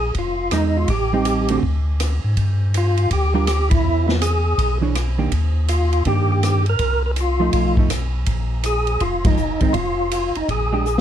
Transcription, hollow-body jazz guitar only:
0.53 G#3 D#4
1.13 G3 C4 D#4
1.50 D3 A3 C4 F#4
3.34 G3 D4 F4 A#4
4.81 E3 D4 G#4 C#5
5.18 D#3 A#3 D4 G4
6.06 D#3 A#3 D4 G4
7.40 F3 A3 D#4
7.78 F3 A3 D#4
9.26 F3 G#3 D#4
9.62 D#3 G#3 C4
10.73 G#3 D4 G4

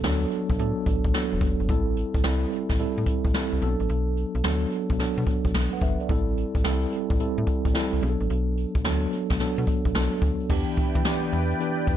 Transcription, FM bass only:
0.04 D2
0.50 B1
0.59 A2
0.87 A1
1.05 A1
1.32 E1
1.41 F#1
1.60 G1
1.69 A1
2.15 A1
2.24 C2
2.70 A1
2.80 A2
2.98 A2
3.25 A1
3.52 C2
3.62 B1
3.80 A1
3.89 B1
4.35 B1
4.44 D2
4.90 B1
4.99 B2
5.18 B2
5.45 B1
5.55 B1
5.82 G1
6.09 A1
6.55 A1
6.65 C2
7.10 A1
7.20 A2
7.38 A2
7.65 A1
7.93 C2
8.02 B1
8.21 A1
8.30 B1
8.75 B1
8.85 D2
9.31 B1
9.40 B2
9.58 B2
9.85 B1
9.95 B1
10.22 D2
10.50 E2
10.78 E3
10.95 E3
11.33 E2
11.88 E2

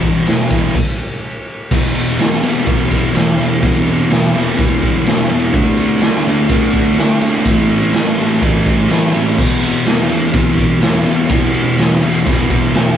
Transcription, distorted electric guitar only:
Already playing: E2
0.04 B2 E3
0.27 E2 B2
0.31 E3
0.51 E3
0.55 B2
1.71 E2 B2 E3
2.18 E2 B2 E3
2.42 E2 B2 E3
2.65 E2 B2 E3
3.14 E2 B2 E3
3.38 E2 B2 E3
3.63 E2 B2 E3
4.10 E2 B2 E3
4.35 E2 B2 E3
4.58 E2 B2 E3
5.06 E2 B2 E3
5.31 E2 B2 E3
5.53 D3 A3 D4
6.03 D3 A3 D4
6.27 D3 A3 D4
6.50 D3 A3 D4
6.98 D3 A3 D4
7.22 D3 A3 D4
7.46 A2 E3 A3
7.93 A2 E3 A3
8.18 A2 E3 A3
8.43 A2 E3 A3
8.90 A2 E3 A3
9.14 A2 E3 A3
9.39 E2 B2 E3
9.87 E2 B2 E3
10.11 E2 B2 E3
10.34 E2 B2 E3
10.82 E2 B2 E3
11.06 E2 B2 E3
11.30 E2 B2 E3
11.78 E2 B2 E3
12.03 E2 B2 E3
12.26 E2 B2 E3
12.74 E2 B2 E3

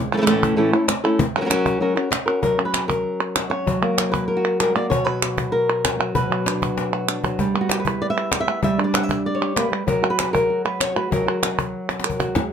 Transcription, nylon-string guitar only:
0.13 E3 A3 C#4 E4 A4
0.17 E3 A3 C#4 E4 A4
0.21 E3 A3 C#4 E4 A4
0.26 A2 E3 A3 C#4 E4 A4
0.56 A2 E3 A3 C#4 E4 A4
0.73 A3 C#4 E4 A4
0.88 muted nylon-string guitar stroke
1.04 A3 C#4 E4 A4
1.19 muted nylon-string guitar stroke
1.37 F#3 C#4 F#4 A#4
1.41 F#3 C#4 F#4 A#4
1.45 F#3 C#4 F#4 A#4
1.50 F#3 C#4 F#4 A#4
1.80 F#3 C#4 F#4 A#4
1.96 C#4 F#4 A#4
2.11 muted nylon-string guitar stroke
2.26 C#4 F#4 A#4
2.42 F#3 A#4
2.58 C#4
2.65 B4
2.88 A#4
3.36 F#4
3.50 C#4 C#5
3.66 F#3
3.82 A#3
4.12 B4
4.28 A#4
4.37 F#4
4.60 G3 A#4
4.75 A#3 D5
4.90 B2 C#5
5.04 F#3 B4
5.52 A#4
5.99 F#3
6.15 B2 B4
6.30 F#3
6.46 D4
6.63 F#4
6.93 F#4
7.08 D4
7.24 F#3
7.39 G3
7.54 B3
7.61 F#4
7.71 G4
7.80 B4
7.86 E4
8.02 D5
8.10 E5
8.34 D5
8.40 E5
8.47 B3
8.63 G3 E5
8.78 D4
8.84 D5
8.96 F#5
9.03 E5
9.26 D5
9.35 C#5
9.41 G4
9.56 A#3 B4
9.72 G3
9.87 F#3 A#4
10.02 F#4
10.10 B4
10.33 A#4
10.50 F#4
10.65 B4
10.81 C#5
10.96 F#4 B4
11.11 F#3 A#4
11.26 F#4
11.43 F#4
12.05 A#4
12.19 F#4
12.36 muted nylon-string guitar stroke

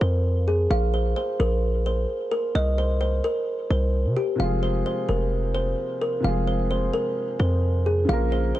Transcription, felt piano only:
4.36 C3 F3
4.40 G#3 F4
4.44 G#4
6.20 C3 F3
6.24 G#3 F4
6.28 G#4
8.05 C#3 F3
8.09 A#3 F4
8.13 A#4

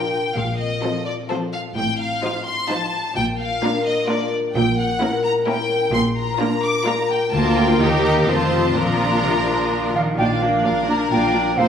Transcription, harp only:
Already playing: A#2 F3 D4 F4 A#4
0.12 D4
0.35 A#2
0.59 C4
0.82 A4
1.06 F4
1.29 A4
1.53 C4
1.76 A2
2.00 D#4
2.24 C5
2.47 F4
2.70 C5
2.94 D#4
3.16 A#2
3.40 D4
3.62 A#4
3.85 F4
4.09 A#4
4.32 D4
4.55 A#2
4.78 C#4
5.01 A#4
5.24 E4
5.48 A#4
5.71 C#4
5.94 A#2
6.17 D4
6.40 A#4
6.63 F4
6.87 A#4
7.10 D4
7.33 D3
7.56 F4 A#4
7.80 D#3
8.03 D#4 G4
8.27 F2
8.51 C4 F4
8.75 A#2
8.98 F3
9.46 D4
9.70 F4
9.94 F3
10.17 A#2
10.33 A#3
10.49 F3
10.65 D4
10.80 F4
10.95 D4
11.11 F4
11.26 F3
11.42 A#3
11.57 A#2

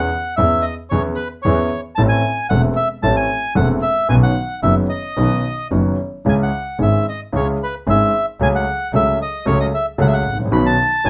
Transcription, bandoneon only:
Already playing: F#5
0.36 E5
0.62 D#5
0.90 C#5
1.16 B4
1.42 C#5
1.95 A5
2.09 G#5
2.49 F#5
2.76 E5
3.03 A5
3.16 G#5
3.56 F#5
3.82 E5
4.09 G#5
4.23 F#5
4.63 E5
4.89 D#5
6.29 G#5
6.43 F#5
6.82 E5
7.09 D#5
7.36 C#5
7.63 B4
7.90 E5
8.43 G#5
8.55 F#5
8.95 E5
9.22 D#5
9.47 C#5
9.60 D#5
9.74 E5
10.01 F#5
10.07 E5
10.13 F#5
10.53 B5
10.66 A5
11.05 G#5

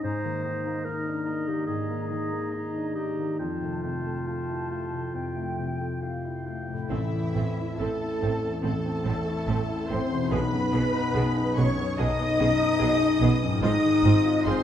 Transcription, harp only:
Already playing: G#3 D#4
0.03 G#2
0.24 D#3
0.44 A#3
0.65 D#4
0.85 A#4
1.06 D#4
1.27 A#3
1.47 D#3
1.68 G#2
1.89 A#3
2.11 D#3
2.32 D#4
2.75 D#4
2.96 A#3
3.18 D#3
3.40 F2
3.61 C3
3.84 A3
4.05 F4
4.27 G4
4.49 F4
4.70 A3
4.93 C3
5.14 F2
5.37 A3
5.59 C3
5.81 F4
6.02 G4
6.25 F4
6.47 A3
6.69 A2 C3
6.78 C4
6.82 E4
6.87 A4
10.14 B2
10.19 B3
10.23 D#4
10.27 G#4
13.45 G#2
13.50 C4
13.54 F4
13.59 G#4

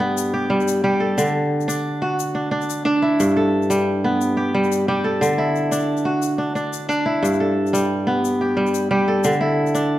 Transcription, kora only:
Already playing: G2 G3 D4 A4
0.00 B3
0.34 G4
0.50 G3
0.84 G3 G4
1.00 A4
1.18 D3
1.68 D4
2.02 F#4
2.35 D4
2.51 D4
2.85 D4
3.02 E4
3.20 G2
3.37 A4
3.70 G3
4.04 B3
4.37 G4
4.55 G3
4.88 G3 G4
5.04 A4
5.21 D3
5.38 E4
5.71 D4
6.05 F#4
6.38 D4
6.55 D4
6.89 D4
7.06 E4
7.23 G2
7.40 A4
7.73 G3
8.07 B3
8.41 G4
8.57 G3
8.91 G3 G4
9.08 A4
9.25 D3
9.41 E4
9.75 D4

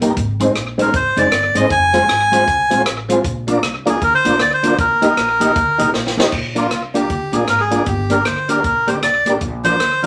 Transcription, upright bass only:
Already playing: A#1
0.17 G#1
0.56 A#1
0.94 G#1
1.17 F1
1.32 G1
1.55 G#1
1.70 F1
2.09 G#1
2.47 C2
2.71 A#1
2.86 A1
3.24 A#1
3.63 C2
4.02 D2
4.25 A#1
4.40 D2
4.79 D#2
5.17 A#1
5.56 D2
5.79 C2
5.94 A#1
6.32 A#1
6.71 C2
7.10 D2
7.33 A#1
7.48 G#1
7.87 G1
8.25 D2
8.64 A#1
8.88 D2
9.03 C2
9.26 A1
9.41 A#1
9.80 D2

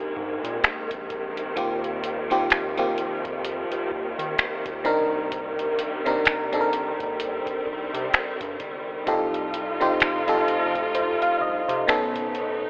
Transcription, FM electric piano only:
Already playing: A#2 A#3 C4 D4 D#4 G4 A#4
1.56 D#3 A#3 C4 F4 G4
2.30 D#3 A#3 C4 F4 G4
2.77 D#3 A#3 C4 F4 G4
4.84 C3 C4 D4 D#4 A#4
6.05 C3 C4 D4 D#4 A#4
6.52 C3 C4 D4 D#4 A4
6.61 A#4
9.07 C3 C4 D#4 F4 G4 A4
9.80 C3 C4 D#4 F4 G4 C5
10.27 C3 C4 D#4 F4 G4 A4
10.95 C5
11.22 F5
11.41 D#5
11.69 C5
11.87 B2 B3 C#4 D#4 A4

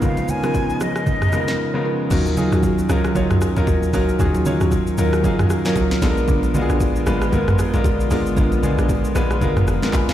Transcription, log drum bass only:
2.11 D#2
2.52 D#2
2.89 C#2
3.15 C#2
3.57 D#2
3.67 D#2
3.93 C#2
4.20 D#2
4.61 D#2
4.98 D#2
5.76 C#2
6.02 A#1
6.28 A#1
6.70 A#1
7.07 G#1
7.32 G#1
7.74 A#1
7.85 A#1
8.11 G#1
8.37 A#1
8.78 A#1
9.15 A#1
9.57 G#1
9.67 F1
9.93 A#1
10.09 G#1

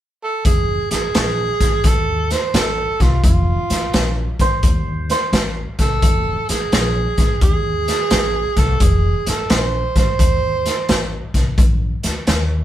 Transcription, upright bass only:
0.45 F1
0.91 A1
1.16 A#1
1.60 A1
1.84 D#2
2.54 A1
3.00 C2
3.24 F1
3.70 A1
3.94 A#1
4.40 A1
4.63 D#2
5.33 A1
5.79 C2
6.03 F1
6.49 A1
6.72 A#1
7.18 A1
7.41 D#2
8.12 A1
8.56 C2
8.80 F1
9.27 A1
9.50 A#1
9.96 A1
10.19 D#2
10.89 A1
11.34 C2
11.58 A#1
12.04 D2
12.28 D#2

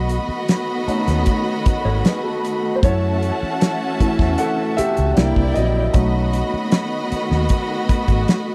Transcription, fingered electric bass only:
Already playing: B1
0.29 muted fingered electric bass stroke
0.88 muted fingered electric bass stroke
1.08 D#2
1.66 muted fingered electric bass stroke
1.85 G#1
2.83 F#2
3.43 muted fingered electric bass stroke
4.01 muted fingered electric bass stroke
4.19 E2
4.79 muted fingered electric bass stroke
4.98 C#2
5.18 C2
5.37 C2
5.57 A#1
5.95 B1
6.54 muted fingered electric bass stroke
7.12 muted fingered electric bass stroke
7.31 D#2
7.89 muted fingered electric bass stroke
8.08 G#1

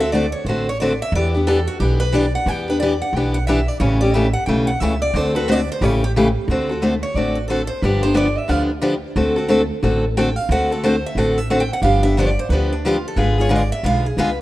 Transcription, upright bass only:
Already playing: D2
0.45 A1
1.12 E2
1.80 B1
2.46 E2
3.13 B1
3.80 A1
4.47 B1
4.81 C#2
5.14 D2
5.81 A1
6.48 D2
7.14 A1
7.82 G1
8.49 D2
9.16 D2
9.83 A1
10.49 D2
11.15 A1
11.82 G1
12.49 D2
13.16 G#1
13.83 B1
14.17 C#2

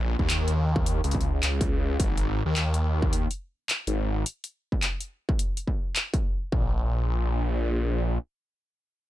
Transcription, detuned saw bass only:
Already playing: A#1
0.19 D#2
1.04 C#2
1.43 C#2
1.99 G#1
2.46 D#2
3.87 G#1
6.52 A#1

